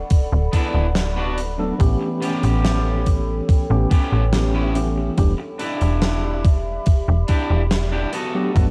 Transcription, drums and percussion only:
0.10 kick loud
0.10 closed hi-hat medium
0.53 kick medium
0.53 closed hi-hat medium
0.95 snare loud
0.95 closed hi-hat medium
1.38 closed hi-hat medium
1.80 kick loud
1.80 closed hi-hat medium
2.22 closed hi-hat medium
2.43 closed hi-hat medium
2.65 snare loud
2.65 closed hi-hat medium
3.06 kick medium
3.06 closed hi-hat medium
3.49 kick loud
3.49 closed hi-hat medium
3.91 kick loud
3.91 closed hi-hat medium
4.33 snare loud
4.33 closed hi-hat loud
4.75 closed hi-hat medium
5.18 kick loud
5.18 closed hi-hat medium
5.59 closed hi-hat medium
5.81 closed hi-hat medium
6.02 snare loud
6.02 closed hi-hat medium
6.45 kick loud
6.45 closed hi-hat medium
6.86 kick loud
6.86 closed hi-hat medium
7.28 kick medium
7.28 closed hi-hat medium
7.71 snare loud
7.71 closed hi-hat medium
8.13 closed hi-hat medium
8.56 kick loud
8.56 closed hi-hat medium

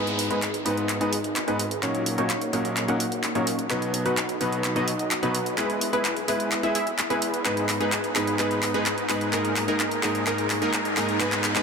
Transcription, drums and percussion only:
0.07 closed hi-hat soft
0.19 open hi-hat loud
0.31 closed hi-hat soft
0.42 clap soft
0.42 closed hi-hat medium
0.54 closed hi-hat soft
0.66 open hi-hat medium
0.77 closed hi-hat soft
0.89 clap soft
0.89 closed hi-hat loud
1.01 closed hi-hat soft
1.13 open hi-hat loud
1.24 closed hi-hat soft
1.36 clap medium
1.36 closed hi-hat loud
1.48 closed hi-hat soft
1.59 open hi-hat medium
1.71 closed hi-hat soft
1.83 clap medium
1.83 closed hi-hat medium
1.95 closed hi-hat soft
2.06 open hi-hat loud
2.18 closed hi-hat soft
2.30 clap medium
2.30 closed hi-hat medium
2.41 closed hi-hat soft
2.53 open hi-hat medium
2.65 closed hi-hat soft
2.77 clap medium
2.77 closed hi-hat loud
2.88 closed hi-hat soft
3.00 open hi-hat loud
3.12 closed hi-hat soft
3.24 clap medium
3.24 closed hi-hat medium
3.35 closed hi-hat soft
3.47 open hi-hat loud
3.59 closed hi-hat soft
3.70 clap medium
3.70 closed hi-hat medium
3.82 closed hi-hat soft
3.94 open hi-hat loud
4.06 closed hi-hat soft
4.17 clap medium
4.17 closed hi-hat medium
4.29 closed hi-hat soft
4.41 open hi-hat medium
4.52 closed hi-hat soft
4.64 clap medium
4.64 closed hi-hat medium
4.76 closed hi-hat soft
4.88 open hi-hat loud
4.99 closed hi-hat soft
5.11 clap medium
5.11 closed hi-hat medium
5.23 closed hi-hat soft
5.35 open hi-hat loud
5.46 closed hi-hat soft
5.58 clap medium
5.58 closed hi-hat medium
5.70 closed hi-hat soft
5.81 open hi-hat loud
5.93 closed hi-hat soft
6.05 clap medium
6.05 closed hi-hat medium
6.17 closed hi-hat soft
6.28 open hi-hat loud
6.40 closed hi-hat soft
6.52 clap medium
6.52 closed hi-hat medium
6.63 closed hi-hat soft
6.75 open hi-hat loud
6.87 closed hi-hat soft
6.99 clap medium
6.99 closed hi-hat medium
7.10 closed hi-hat soft
7.22 open hi-hat loud
7.34 closed hi-hat soft
7.45 clap medium
7.45 closed hi-hat medium
7.57 closed hi-hat soft
7.69 clap medium
7.69 open hi-hat loud
7.81 closed hi-hat soft
7.92 clap medium
7.92 closed hi-hat medium
8.04 closed hi-hat soft
8.16 clap medium
8.16 open hi-hat medium
8.27 closed hi-hat soft
8.39 clap medium
8.39 closed hi-hat medium
8.51 closed hi-hat soft
8.63 clap medium
8.63 open hi-hat loud
8.74 closed hi-hat soft
8.86 clap medium
8.86 closed hi-hat medium
8.98 closed hi-hat soft
9.09 clap medium
9.09 open hi-hat loud
9.21 closed hi-hat soft
9.33 clap medium
9.33 closed hi-hat medium
9.45 closed hi-hat soft
9.56 clap medium
9.56 open hi-hat loud
9.68 closed hi-hat soft
9.80 clap medium
9.80 closed hi-hat medium
9.91 closed hi-hat soft
10.03 clap medium
10.03 open hi-hat medium
10.15 closed hi-hat soft
10.27 clap medium
10.27 closed hi-hat medium
10.38 closed hi-hat soft
10.50 clap medium
10.50 open hi-hat loud
10.62 closed hi-hat soft
10.73 clap medium
10.73 closed hi-hat loud
10.85 closed hi-hat soft
10.97 clap medium
10.97 open hi-hat medium
11.09 closed hi-hat soft
11.20 clap medium
11.20 closed hi-hat medium
11.32 clap medium
11.32 closed hi-hat soft
11.44 clap loud
11.44 open hi-hat loud
11.56 clap medium
11.56 closed hi-hat soft

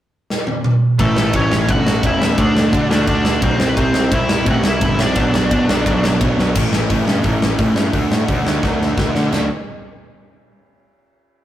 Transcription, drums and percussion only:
0.30 snare medium
0.47 high tom medium
0.64 mid tom medium
0.99 kick loud
0.99 ride medium
1.16 snare loud
1.33 kick loud
1.33 ride medium
1.52 snare loud
1.69 kick loud
1.69 ride medium
1.87 snare loud
2.03 kick loud
2.03 ride medium
2.22 snare loud
2.38 kick loud
2.38 ride medium
2.57 snare loud
2.73 kick loud
2.73 ride medium
2.91 snare loud
3.07 kick loud
3.07 ride medium
3.25 snare loud
3.42 kick loud
3.42 ride medium
3.60 snare loud
3.77 kick loud
3.77 ride medium
3.94 snare loud
4.12 kick loud
4.12 ride medium
4.29 snare loud
4.46 kick loud
4.46 ride medium
4.64 snare loud
4.81 kick loud
4.81 ride medium
4.99 snare loud
5.15 kick loud
5.15 ride medium
5.34 snare loud
5.51 kick loud
5.51 ride medium
5.69 snare loud
5.86 kick loud
5.86 ride medium
6.04 snare loud
6.21 kick loud
6.21 ride medium
6.39 snare medium
6.55 kick loud
6.55 crash medium
6.73 snare loud
6.90 kick loud
6.90 open hi-hat medium
7.08 snare loud
7.23 kick medium
7.23 open hi-hat medium
7.42 snare loud
7.59 kick loud
7.59 open hi-hat medium
7.76 snare loud
7.93 kick loud
7.93 open hi-hat medium
8.12 snare loud
8.28 kick loud
8.28 open hi-hat medium
8.47 snare loud
8.63 kick medium
8.63 snare medium
8.82 snare medium
8.98 kick loud
8.98 snare medium
9.15 snare medium
9.32 snare medium
9.32 floor tom medium
9.32 crash medium

